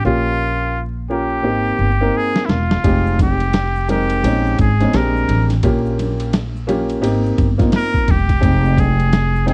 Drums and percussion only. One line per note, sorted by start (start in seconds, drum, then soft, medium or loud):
2.36 snare medium
2.49 snare loud
2.71 snare medium
2.84 kick loud
2.84 ride medium
2.84 shaker medium
3.06 shaker soft
3.19 kick medium
3.19 ride medium
3.19 low conga medium
3.19 shaker soft
3.40 ride soft
3.40 shaker soft
3.53 snare loud
3.53 hi-hat pedal soft
3.53 ride medium
3.53 shaker medium
3.76 shaker soft
3.89 ride medium
3.89 low conga medium
3.89 shaker soft
4.10 ride soft
4.10 shaker soft
4.24 ride medium
4.24 high conga soft
4.24 shaker medium
4.46 shaker soft
4.58 kick medium
4.58 ride soft
4.58 shaker soft
4.80 snare soft
4.80 ride soft
4.80 high conga medium
4.80 shaker soft
4.93 snare loud
4.93 hi-hat pedal soft
4.93 ride medium
4.93 shaker medium
5.17 shaker soft
5.29 ride medium
5.29 low conga medium
5.29 shaker soft
5.50 snare soft
5.50 ride soft
5.50 shaker soft
5.63 kick medium
5.63 ride medium
5.63 shaker medium
5.86 shaker soft
5.99 ride medium
5.99 low conga medium
5.99 shaker soft
6.20 ride soft
6.20 shaker soft
6.33 snare medium
6.33 hi-hat pedal soft
6.33 ride medium
6.33 shaker medium
6.56 shaker soft
6.69 ride medium
6.69 low conga medium
6.69 shaker soft
6.89 ride soft
6.89 shaker soft
7.04 ride medium
7.04 high conga soft
7.04 shaker medium
7.26 shaker soft
7.38 kick medium
7.38 ride soft
7.38 shaker soft
7.59 kick medium
7.59 snare soft
7.59 ride soft
7.59 high conga medium
7.59 shaker medium
7.72 snare loud
7.72 hi-hat pedal medium
7.72 ride medium
7.72 shaker medium
7.94 kick medium
7.94 shaker soft
8.08 kick loud
8.08 ride medium
8.08 low conga medium
8.08 shaker soft
8.29 kick medium
8.29 snare soft
8.29 ride soft
8.29 shaker medium
8.43 kick medium
8.43 ride medium
8.43 shaker medium
8.65 shaker soft
8.78 kick medium
8.78 ride medium
8.78 low conga medium
8.78 shaker medium
9.00 ride soft
9.00 shaker soft
9.13 snare loud
9.13 hi-hat pedal soft
9.13 ride medium
9.13 shaker medium
9.36 shaker soft
9.48 ride medium
9.48 low conga medium
9.48 shaker soft